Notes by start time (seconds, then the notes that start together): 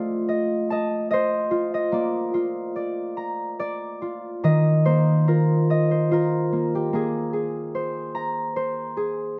Already playing: A3 F4 C5 D5 F5
0.29 D#5
0.70 D#5 A5
1.11 C5 D#5
1.51 F4
1.74 D#5
1.92 A#3 D5
2.34 F4
2.76 D5
3.17 A#5
3.59 D5
4.02 F4
4.44 D#3 D#5
4.85 A#3 C5
5.28 F4 A#4
5.70 D#5
5.91 C5
6.11 F4 A#4
6.52 A#3
6.75 G4
6.93 A#3 G#4
7.33 G#4
7.75 C5
8.15 A#5
8.56 C5
8.97 G#4